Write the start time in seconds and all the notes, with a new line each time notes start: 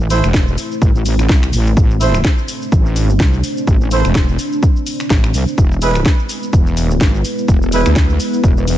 Already playing: A1 A3 C4 E4 C5
0.00 shaker
0.10 A3 E4 C5, open hi-hat, shaker
0.24 E1, finger snap, shaker
0.34 kick, snare, shaker
0.48 shaker
0.58 open hi-hat, shaker
0.72 shaker
0.82 A1, kick, shaker
0.95 shaker
1.06 open hi-hat, shaker
1.19 finger snap, shaker
1.29 C2, kick, snare, shaker
1.43 finger snap, shaker
1.53 A1, open hi-hat, shaker
1.67 shaker
1.77 A1 D4, kick, shaker
1.91 shaker
2.01 A3 E4 C5, open hi-hat, shaker
2.14 finger snap, shaker
2.25 kick, snare, shaker
2.38 shaker
2.48 open hi-hat, shaker
2.62 shaker
2.72 A1, kick, shaker
2.86 shaker
2.96 open hi-hat, shaker
3.10 shaker
3.20 C2, kick, snare, shaker
3.33 shaker
3.44 open hi-hat, shaker
3.57 shaker
3.67 A1, kick, shaker
3.81 shaker
3.91 A3 E4 C5, open hi-hat, shaker
4.05 E1, finger snap, shaker
4.15 kick, snare, shaker
4.29 shaker
4.39 open hi-hat, shaker
4.53 shaker
4.63 kick, shaker
4.76 shaker
4.86 open hi-hat, shaker
5.00 finger snap, shaker
5.10 A1, kick, snare, shaker
5.24 finger snap, shaker
5.34 C2, open hi-hat, shaker
5.48 shaker
5.58 E1 G#3 B3 E4 B4, kick, shaker
5.72 shaker
5.82 G#3 E4 B4, open hi-hat, shaker
5.95 finger snap, shaker
6.06 kick, snare, shaker
6.19 shaker
6.29 open hi-hat, shaker
6.43 shaker
6.53 E1, kick, shaker
6.67 shaker
6.77 open hi-hat, shaker
6.91 shaker
7.01 G#1, kick, snare, shaker
7.14 shaker
7.25 open hi-hat, shaker
7.38 shaker
7.48 E1, kick, shaker
7.62 shaker
7.72 G#3 E4 B4, open hi-hat, shaker
7.86 D2, finger snap, shaker
7.96 kick, snare, shaker
8.10 shaker
8.20 open hi-hat, shaker
8.33 shaker
8.44 E1, kick, shaker
8.57 shaker
8.67 open hi-hat, shaker